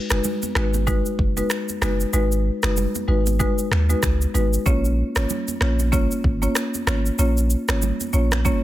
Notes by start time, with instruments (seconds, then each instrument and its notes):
0.10 sub bass F#1, marimba G#3 D#4 F#4 B4, finger snap, cross-stick, shaker
0.24 low conga, shaker
0.42 high conga, shaker
0.55 sub bass G#1, marimba G#3 D#4 F#4 B4, finger snap, cross-stick
0.74 high conga, shaker
0.87 marimba G#3 D#4 F#4 B4, kick, low conga, shaker
1.06 shaker
1.19 sub bass F#1, kick
1.37 marimba G#3 D#4 F#4 B4, high conga, shaker
1.50 finger snap, cross-stick, shaker
1.69 high conga, shaker
1.82 sub bass F#1, marimba G#3 D#4 F#4 B4, finger snap, cross-stick, high conga, shaker
2.00 shaker
2.13 sub bass G#1, marimba G#3 D#4 F#4 B4, shaker
2.32 shaker
2.63 sub bass F#1, marimba G#3 D#4 F#4 B4, finger snap, cross-stick, shaker
2.77 low conga, shaker
2.95 high conga, shaker
3.08 sub bass G#1, marimba G#3 D#4 F#4 B4
3.26 high conga, shaker
3.39 marimba G#3 D#4 F#4 B4, kick, low conga, shaker
3.58 shaker
3.71 sub bass D#2, finger snap, cross-stick
3.89 marimba G#3 D#4 F#4 B4, high conga, shaker
4.03 sub bass C#2, finger snap, kick, cross-stick, shaker
4.21 high conga, shaker
4.34 sub bass G#1, marimba G#3 D#4 F#4 B4, high conga, shaker
4.53 shaker
4.66 sub bass A#1, marimba A#3 C#4 F4 C#5, kick, shaker
4.85 shaker
5.16 sub bass G#1, marimba A#3 C#4 F4 C#5, finger snap, cross-stick, shaker
5.30 low conga, shaker
5.48 high conga, shaker
5.61 sub bass A#1, marimba A#3 C#4 F4 C#5, finger snap, cross-stick
5.79 high conga, shaker
5.92 marimba A#3 C#4 F4 C#5, kick, low conga, shaker
6.11 shaker
6.24 sub bass G#1, kick
6.42 marimba A#3 C#4 F4 C#5, high conga, shaker
6.55 finger snap, cross-stick, shaker
6.74 high conga, shaker
6.87 sub bass G#1, marimba A#3 C#4 F4 C#5, finger snap, cross-stick, high conga, shaker
7.06 shaker
7.19 sub bass A#1, marimba A#3 C#4 F4 C#5, shaker
7.37 shaker
7.50 shaker
7.68 sub bass G#1, marimba A#3 C#4 F4 C#5, finger snap, cross-stick, shaker
7.82 low conga, shaker
8.00 high conga, shaker
8.13 sub bass A#1, marimba A#3 C#4 F4 C#5, shaker
8.32 finger snap, cross-stick, high conga, shaker
8.45 marimba A#3 C#4 F4 C#5, kick, low conga, shaker